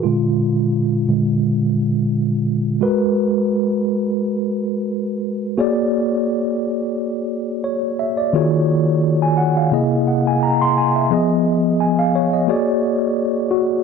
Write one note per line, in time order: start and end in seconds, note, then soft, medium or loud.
0.03 0.51 A#2 soft
0.03 0.52 D3 soft
0.03 0.52 G#3 medium
0.03 1.38 F4 medium
1.08 1.39 A#2 soft
1.08 1.39 D3 soft
1.08 1.40 G#3 soft
2.81 5.53 G#3 medium
2.81 5.53 F#4 medium
2.81 5.54 A#4 medium
2.81 5.54 B4 medium
5.58 8.30 A#3 medium
5.58 8.30 F#4 medium
5.58 8.30 G#4 medium
5.58 7.62 C#5 medium
5.58 7.62 D5 medium
7.64 7.97 C#5 medium
7.99 8.17 E5 medium
8.17 8.50 D5 medium
8.33 9.69 D#3 medium
8.33 9.69 A#3 medium
8.33 9.70 F4 medium
8.33 9.70 F#4 medium
8.33 9.70 G#4 medium
8.33 9.70 C#5 medium
9.22 9.37 G#5 medium
9.37 9.55 F#5 medium
9.57 9.90 F5 medium
9.71 11.07 C3 medium
9.71 11.08 A#3 medium
9.71 11.08 E4 medium
9.71 11.08 G#4 medium
9.71 10.07 D#5 medium
10.07 10.25 F#5 medium
10.27 10.42 G#5 medium
10.43 10.60 A#5 medium
10.61 10.76 C6 medium
10.78 10.95 G#5 medium
10.96 11.28 E5 medium
11.10 12.46 F3 medium
11.10 12.46 B3 medium
11.10 12.47 G#4 medium
11.10 11.80 D#5 medium
11.80 11.98 G#5 medium
11.99 12.14 F5 medium
12.15 12.33 C#5 medium
12.33 12.66 D#5 medium
12.48 13.83 A#3 medium
12.48 13.50 F#4 medium
12.48 13.83 G#4 medium
12.48 13.83 C#5 medium
12.48 13.83 D5 medium
13.51 13.67 F#4 medium